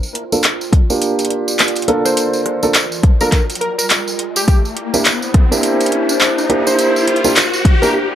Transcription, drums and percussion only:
0.03 tambourine
0.15 closed hi-hat
0.32 tambourine
0.43 clap, closed hi-hat, tambourine
0.61 tambourine
0.73 kick, closed hi-hat
0.90 tambourine
1.01 closed hi-hat, tambourine
1.19 closed hi-hat, tambourine
1.25 closed hi-hat
1.30 closed hi-hat
1.48 tambourine
1.59 clap, closed hi-hat, tambourine
1.68 closed hi-hat
1.75 closed hi-hat, tambourine
1.82 closed hi-hat
1.88 closed hi-hat
2.05 cross-stick, tambourine
2.17 closed hi-hat, tambourine
2.33 tambourine
2.46 cross-stick, closed hi-hat
2.63 tambourine
2.74 clap, closed hi-hat, tambourine
2.92 tambourine
3.03 kick, closed hi-hat
3.21 tambourine
3.32 kick, clap, closed hi-hat, tambourine
3.50 closed hi-hat, tambourine
3.55 closed hi-hat
3.61 closed hi-hat
3.79 tambourine
3.90 clap, closed hi-hat, tambourine
4.08 tambourine
4.19 closed hi-hat
4.36 tambourine
4.48 kick, closed hi-hat, tambourine
4.65 tambourine
4.77 closed hi-hat
4.94 tambourine
5.05 clap, closed hi-hat, tambourine
5.22 tambourine
5.34 kick, closed hi-hat
5.52 tambourine
5.63 closed hi-hat, tambourine
5.81 closed hi-hat, tambourine
5.86 closed hi-hat
5.92 closed hi-hat
6.09 tambourine
6.21 clap, tambourine
6.38 tambourine
6.50 closed hi-hat
6.67 cross-stick, tambourine
6.79 closed hi-hat, tambourine
6.96 tambourine
7.08 cross-stick, closed hi-hat
7.16 closed hi-hat
7.24 tambourine
7.36 clap, closed hi-hat, tambourine
7.53 tambourine
7.65 kick, closed hi-hat
7.83 tambourine

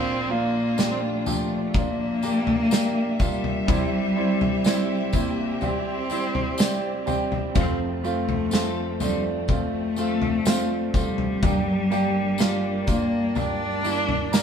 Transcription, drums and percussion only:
0.78 snare, tambourine
1.26 floor tom, tambourine
1.74 kick, floor tom, tambourine
2.22 tambourine
2.47 floor tom
2.71 snare, tambourine
3.19 kick, floor tom, tambourine
3.44 floor tom
3.68 kick, floor tom, tambourine
4.41 floor tom
4.64 snare, tambourine
5.13 kick, floor tom, tambourine
5.61 floor tom, tambourine
6.10 tambourine
6.35 floor tom
6.58 snare, tambourine
7.07 floor tom, tambourine
7.32 floor tom
7.55 kick, floor tom, tambourine
8.04 tambourine
8.29 floor tom
8.51 snare, tambourine
9.00 floor tom, tambourine
9.48 kick, floor tom, tambourine
9.96 tambourine
10.22 floor tom
10.45 snare, tambourine
10.94 kick, floor tom, tambourine
11.18 floor tom
11.43 kick, floor tom, tambourine
11.92 tambourine
12.38 snare, tambourine
12.87 kick, floor tom, tambourine
13.35 floor tom, tambourine
13.84 tambourine
14.09 floor tom
14.33 snare, tambourine

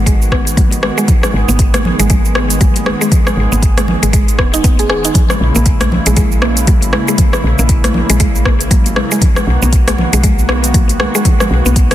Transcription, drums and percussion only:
0.06 kick, closed hi-hat, shaker
0.22 shaker
0.32 kick, cross-stick, muted conga
0.47 closed hi-hat, shaker
0.57 kick, closed hi-hat, high conga, shaker
0.71 closed hi-hat, muted conga, shaker
0.83 cross-stick
0.98 shaker
1.08 kick, closed hi-hat, muted conga, low conga, shaker
1.23 cross-stick, shaker
1.48 high conga, shaker
1.59 kick, closed hi-hat, muted conga, shaker
1.74 cross-stick, closed hi-hat, high conga, shaker
1.85 low conga
1.99 closed hi-hat, muted conga, shaker
2.10 kick, closed hi-hat, high conga, low conga, shaker
2.25 shaker
2.35 cross-stick, muted conga
2.50 closed hi-hat, shaker
2.61 kick, closed hi-hat, high conga, shaker
2.76 closed hi-hat, muted conga, shaker
2.86 cross-stick, high conga
3.02 shaker
3.12 kick, closed hi-hat, muted conga, high conga, low conga, shaker
3.27 cross-stick, shaker
3.52 high conga, shaker
3.62 kick, closed hi-hat, muted conga, shaker
3.77 cross-stick, closed hi-hat, high conga, shaker
3.88 low conga
4.03 closed hi-hat, muted conga, shaker
4.13 kick, closed hi-hat, shaker
4.28 closed hi-hat, shaker
4.39 kick, cross-stick, muted conga
4.54 closed hi-hat, shaker
4.64 kick, closed hi-hat, high conga, shaker
4.79 closed hi-hat, muted conga, shaker
4.90 cross-stick
5.05 closed hi-hat, shaker
5.14 kick, closed hi-hat, muted conga, low conga, shaker
5.30 cross-stick, shaker
5.55 high conga, shaker
5.66 kick, closed hi-hat, muted conga, shaker
5.80 cross-stick, closed hi-hat, high conga, shaker
5.92 low conga
6.06 closed hi-hat, muted conga, shaker
6.17 kick, closed hi-hat, high conga, low conga, shaker
6.32 shaker
6.42 cross-stick, muted conga
6.57 closed hi-hat, shaker
6.67 kick, closed hi-hat, high conga, shaker
6.82 closed hi-hat, muted conga, shaker
6.92 cross-stick, high conga
7.08 shaker
7.18 kick, closed hi-hat, muted conga, high conga, low conga, shaker
7.33 cross-stick, shaker
7.59 high conga, shaker
7.69 kick, closed hi-hat, muted conga, shaker
7.84 cross-stick, closed hi-hat, high conga, shaker
7.94 low conga
8.10 closed hi-hat, muted conga, shaker
8.20 kick, closed hi-hat, shaker
8.35 shaker
8.45 kick, cross-stick, muted conga
8.61 closed hi-hat, shaker
8.71 kick, closed hi-hat, high conga, shaker
8.86 closed hi-hat, muted conga, shaker
8.96 cross-stick
9.12 shaker
9.21 kick, closed hi-hat, muted conga, low conga, shaker
9.36 cross-stick, shaker
9.62 high conga, shaker
9.73 kick, closed hi-hat, muted conga, shaker
9.87 cross-stick, closed hi-hat, high conga, shaker
9.98 low conga
10.13 closed hi-hat, muted conga, shaker
10.23 kick, closed hi-hat, high conga, low conga, shaker
10.39 shaker
10.49 cross-stick, muted conga
10.64 closed hi-hat, shaker
10.74 kick, closed hi-hat, high conga, shaker
10.89 closed hi-hat, muted conga, shaker
11.00 cross-stick, high conga
11.15 shaker
11.25 kick, closed hi-hat, muted conga, high conga, low conga, shaker
11.40 cross-stick, shaker
11.66 high conga, shaker
11.76 kick, closed hi-hat, muted conga, shaker
11.91 cross-stick, closed hi-hat, shaker

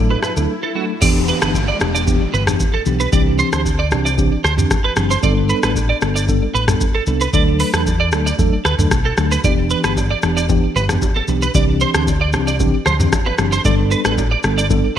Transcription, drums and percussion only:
0.10 high bongo
0.23 cross-stick, low conga, shaker
0.37 low bongo, shaker
1.02 kick, crash, shaker
1.28 shaker
1.42 cross-stick, shaker
1.54 kick, shaker
1.80 cross-stick, shaker
1.95 shaker
2.07 kick, shaker
2.34 shaker
2.47 cross-stick, mid tom, shaker
2.60 kick, shaker
2.86 shaker
3.00 shaker
3.12 kick, shaker
3.39 shaker
3.53 cross-stick, shaker
3.65 kick, shaker
3.91 cross-stick, shaker
4.06 shaker
4.18 kick, shaker
4.44 cross-stick, shaker
4.58 mid tom, shaker
4.71 kick, cross-stick, shaker
4.96 cross-stick, shaker
5.11 shaker
5.23 kick, shaker
5.49 shaker
5.63 cross-stick, shaker
5.75 kick, shaker
6.01 cross-stick, shaker
6.16 shaker
6.28 kick, shaker
6.55 shaker
6.68 cross-stick, mid tom, shaker
6.81 kick, shaker
7.06 shaker
7.21 shaker
7.33 kick, shaker
7.60 open hi-hat, shaker
7.74 cross-stick, shaker
7.86 kick, shaker
8.12 cross-stick, shaker
8.27 shaker
8.39 kick, shaker
8.65 cross-stick, shaker
8.79 mid tom, shaker
8.91 kick, cross-stick, shaker
9.17 cross-stick, shaker
9.32 shaker
9.44 kick, low conga, shaker
9.70 shaker
9.84 cross-stick, shaker
9.96 kick, high bongo, shaker
10.22 cross-stick, shaker
10.37 shaker
10.49 kick, low conga, shaker
10.76 low conga, shaker
10.89 cross-stick, mid tom, low bongo, shaker
11.02 kick, high bongo, shaker
11.16 low bongo
11.28 high bongo, shaker
11.42 shaker
11.54 kick, low conga, shaker
11.81 shaker
11.94 cross-stick, shaker
12.07 kick, high bongo, shaker
12.33 cross-stick, shaker
12.48 shaker
12.60 kick, low conga, shaker
12.86 cross-stick, low conga, shaker
13.00 mid tom, low bongo, shaker
13.12 kick, cross-stick, high bongo, shaker
13.27 low bongo
13.38 cross-stick, high bongo, shaker
13.52 shaker
13.65 kick, low conga, shaker
13.91 shaker
14.05 cross-stick, shaker
14.17 kick, high bongo, shaker
14.43 cross-stick, shaker
14.58 shaker
14.70 kick, low conga, shaker

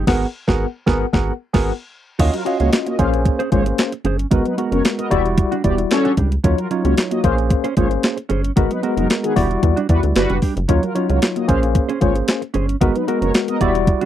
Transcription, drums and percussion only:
0.07 kick, snare, crash
0.48 kick, snare
0.87 kick, snare
1.13 kick, snare
1.54 kick, snare, crash
2.19 kick, closed hi-hat, crash
2.34 closed hi-hat
2.46 closed hi-hat
2.60 closed hi-hat
2.73 snare, clap, closed hi-hat
2.87 closed hi-hat
2.99 kick, closed hi-hat
3.14 closed hi-hat
3.25 kick, closed hi-hat
3.40 closed hi-hat
3.52 kick, closed hi-hat
3.66 closed hi-hat
3.78 snare, clap, closed hi-hat
3.92 closed hi-hat
4.05 closed hi-hat
4.19 closed hi-hat
4.31 kick, closed hi-hat
4.46 closed hi-hat
4.58 closed hi-hat
4.72 closed hi-hat
4.85 snare, clap, closed hi-hat
4.99 closed hi-hat
5.11 kick, closed hi-hat
5.26 closed hi-hat
5.38 kick, closed hi-hat
5.52 closed hi-hat
5.64 kick, closed hi-hat
5.78 closed hi-hat
5.91 snare, clap, closed hi-hat
6.05 closed hi-hat
6.17 kick, closed hi-hat
6.32 closed hi-hat
6.44 kick, closed hi-hat
6.58 closed hi-hat
6.71 closed hi-hat
6.85 closed hi-hat
6.97 snare, clap, closed hi-hat
7.11 closed hi-hat
7.24 kick, closed hi-hat
7.38 closed hi-hat
7.50 kick, closed hi-hat
7.64 closed hi-hat
7.77 kick, closed hi-hat
7.91 closed hi-hat
8.03 snare, clap, closed hi-hat
8.18 closed hi-hat
8.30 closed hi-hat
8.45 closed hi-hat
8.57 kick, closed hi-hat
8.71 closed hi-hat
8.83 closed hi-hat
8.97 closed hi-hat
9.10 snare, clap, closed hi-hat
9.24 closed hi-hat
9.36 kick, open hi-hat
9.51 closed hi-hat
9.63 kick, closed hi-hat
9.77 closed hi-hat
9.89 kick, closed hi-hat
10.03 closed hi-hat
10.16 snare, clap, closed hi-hat
10.30 closed hi-hat
10.42 kick, open hi-hat
10.57 closed hi-hat
10.69 kick, closed hi-hat
10.83 closed hi-hat
10.96 closed hi-hat
11.10 closed hi-hat
11.22 snare, clap, closed hi-hat
11.36 closed hi-hat
11.49 kick, closed hi-hat
11.63 closed hi-hat
11.75 kick, closed hi-hat
11.89 closed hi-hat
12.01 kick, closed hi-hat
12.16 closed hi-hat
12.28 snare, clap, closed hi-hat
12.42 closed hi-hat
12.54 closed hi-hat
12.69 closed hi-hat
12.81 kick, closed hi-hat
12.96 closed hi-hat
13.08 closed hi-hat
13.22 closed hi-hat
13.34 snare, clap, closed hi-hat
13.48 closed hi-hat
13.61 kick, closed hi-hat
13.75 closed hi-hat
13.87 kick, closed hi-hat
14.01 closed hi-hat

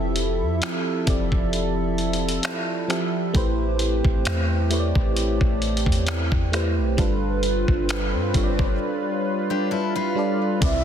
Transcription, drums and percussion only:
0.16 closed hi-hat
0.62 finger snap, closed hi-hat
1.07 kick, closed hi-hat
1.32 kick
1.53 closed hi-hat
1.98 closed hi-hat
2.13 closed hi-hat
2.29 closed hi-hat
2.43 finger snap, closed hi-hat
2.90 finger snap, closed hi-hat
3.35 kick, closed hi-hat
3.79 closed hi-hat
4.05 kick
4.25 finger snap, closed hi-hat
4.71 closed hi-hat
4.95 kick
5.17 closed hi-hat
5.41 kick
5.62 closed hi-hat
5.77 closed hi-hat
5.86 kick
5.92 closed hi-hat
6.07 finger snap, closed hi-hat
6.32 kick
6.53 finger snap, closed hi-hat
6.98 kick, closed hi-hat
7.43 closed hi-hat
7.68 kick
7.89 finger snap, closed hi-hat
8.34 kick, closed hi-hat
8.59 kick
10.62 kick, closed hi-hat

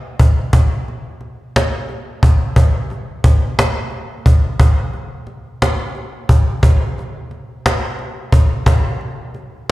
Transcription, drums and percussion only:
0.19 cajon bass
0.53 cajon bass
0.88 cajon slap
1.21 cajon slap
1.56 cajon slap
1.89 cajon slap
2.23 cajon bass
2.56 cajon bass
2.90 cajon slap
3.24 cajon bass
3.59 cajon slap
3.91 cajon slap
4.26 cajon bass
4.60 cajon bass
4.94 cajon slap
5.27 cajon slap
5.62 cajon slap
5.95 cajon slap
6.29 cajon bass
6.63 cajon bass
6.98 cajon slap
7.31 cajon slap
7.66 cajon slap
7.99 cajon slap
8.32 cajon bass
8.66 cajon bass
9.01 cajon slap
9.34 cajon slap

